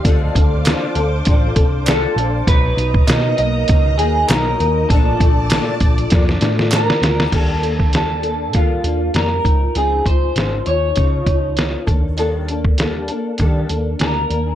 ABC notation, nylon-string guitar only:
X:1
M:4/4
L:1/8
Q:"Swing 16ths" 1/4=99
K:Eblyd
V:1 name="Nylon-string guitar"
[D,F,CDA] [CDA] [D,F,CDA] [CDA] [F,CDA] [CDA] [D,F,CDA] [CDA] | [=B,,^F,^D] [F,D] [B,,F,^A,D] [F,A,D] [B,,F,A,D] [F,A,D] [B,,F,A,D] [F,A,D] | [B,,F,A,D] [F,A,D] [B,,F,A,D] [F,A,D] [B,,F,A,D] [F,A,D] [F,D] [F,D] | [E,G,B,DA] [B,DA] [G,B,DA] [B,DA] [E,G,B,DA] [B,DA] [G,B,D] [F,CE] |
[_D,F,CE] [F,CE] [D,F,CE] [F,E] [D,F,E] [F,E] [D,F,E] [B,=DA] | [E,G,B,DA] [B,DA] [G,B,DA] [B,DA] [E,G,B,DA] [B,DA] [G,B,D] [B,D] |]